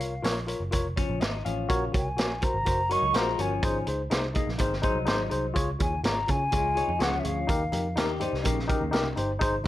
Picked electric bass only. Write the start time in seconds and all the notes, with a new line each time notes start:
0.00 C2
0.24 A#1
0.60 F#1
0.73 F1
1.10 A#1
1.22 G#1
1.46 A1
1.70 A#1
1.94 C2
2.18 A#1
2.54 G#1
2.67 F#1
3.02 C#2
3.15 A#1
3.39 G1
3.63 G#1
3.87 C#2
4.11 C2
4.48 A#1
4.60 G#1
4.95 C2
5.08 G#1
5.32 C2
5.56 C#2
5.80 D#2
6.04 G#1
6.29 C#3
6.53 C#2
6.88 F2
7.00 C#2
7.24 D2
7.49 D#2
7.73 F2
7.97 D#2
8.33 C2
8.45 A#1
8.81 D#2
8.93 C2
9.17 G1
9.41 G#1